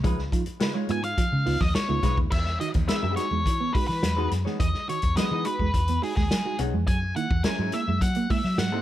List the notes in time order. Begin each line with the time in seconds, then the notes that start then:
0.03 C#2 C#3 F3 G#3 D#4 F4 B4, kick, closed hi-hat
0.19 snare
0.32 F3 D#4 F4, kick, closed hi-hat
0.46 muted fingered electric bass stroke, muted clean electric guitar stroke, closed hi-hat
0.60 C#3 G#3 D#4 F4 B4, muted clean electric guitar stroke, snare, closed hi-hat
0.74 G#3 D#4 F4 C#5
0.89 G#2 G#3 B3 D#4 F4 G#5, closed hi-hat
1.03 F5, closed hi-hat
1.18 F3 D#4 F4, kick, closed hi-hat
1.32 C#3 G#3
1.46 C#2 B3 D#4 F4, muted clean electric guitar stroke, open hi-hat
1.60 D#2 F3 D#5, kick, snare
1.75 C#5, snare, closed hi-hat
1.88 C#2 G#3 B3 D#4 F4
2.03 B1 G#3 D#4 F4 B4, kick, snare, closed hi-hat
2.17 D#2 C#3 G#3, kick
2.32 E2 E3 E5, kick, crash
2.46 muted clean electric guitar stroke, snare
2.60 D#3 D#4 F#4 D#5, closed hi-hat
2.74 D#2 E3, kick, closed hi-hat
2.88 E3 B3 D#4 G#4 B4 E5, snare, closed hi-hat
3.02 F#2 F#3 B3 D#4 G#4 B4
3.16 G#3 D#4 F#4 C#5, muted clean electric guitar stroke, snare, closed hi-hat
3.31 E2 G#3
3.46 E3 D#4 F#4, muted clean electric guitar stroke, kick, closed hi-hat
3.60 E3 B3
3.73 G#3 D#4 F#4 B4, muted fingered electric bass stroke, kick, open hi-hat
3.87 E3 B4, snare
4.03 E2 F#3, snare, closed hi-hat
4.17 G#3 B3 D#4 F#4 G#4 B4, muted clean electric guitar stroke
4.31 F#2, snare, closed hi-hat
4.45 E3 G#3 B3 D#4 G#4 C#5, snare
4.60 E2 E3 D#5, kick, closed hi-hat
4.74 muted clean electric guitar stroke, snare
4.88 D#3 D#4 F#4 C#5, closed hi-hat
5.02 E2, kick, closed hi-hat
5.17 E3 F#3 B3 D#4 G#4 B4 D#5, muted fingered electric bass stroke, snare, closed hi-hat
5.31 E3 B3 D#4 G#4 B4
5.45 G#3 D#4 F#4 B4, muted clean electric guitar stroke, closed hi-hat
5.59 E2 G#3 D#4 F#4, kick
5.74 E2 D#4 F#4, kick, closed hi-hat
5.88 E3 B3, closed hi-hat
6.02 G#3 D#4 F#4 G#4, muted clean electric guitar stroke, open hi-hat
6.16 D#2 G#3 G#4, kick, snare
6.31 F#3, snare, closed hi-hat
6.45 G#3 D#4 F#4, muted clean electric guitar stroke
6.59 B1 B3 D#4 G#4 C#5, closed hi-hat
6.74 F2 E3 G#3
6.87 F#2 F#3 G#5, kick, closed hi-hat
7.03 muted clean electric guitar stroke
7.16 D#3 A#3 E4 F#5, closed hi-hat
7.31 E2 E3, kick
7.44 F#3 G#3 C#4 E4 A#4 G#5, snare, closed hi-hat
7.59 G#2 F#3 G#3 C#4 E4 A#4
7.72 G#3 A#3 E4 E5, muted clean electric guitar stroke, snare, closed hi-hat
7.88 F#2 G#3 A#3 E4
8.01 F#3 A#3 E4 F#5, muted clean electric guitar stroke, kick, closed hi-hat
8.15 F#3 A#3, closed hi-hat
8.30 G#3 A#3 E4 E5, muted fingered electric bass stroke, kick, open hi-hat
8.44 F#3, snare
8.58 G#2 F#3 F#5, snare, closed hi-hat
8.72 G#3 A#3 C#4 E4 A#4, muted clean electric guitar stroke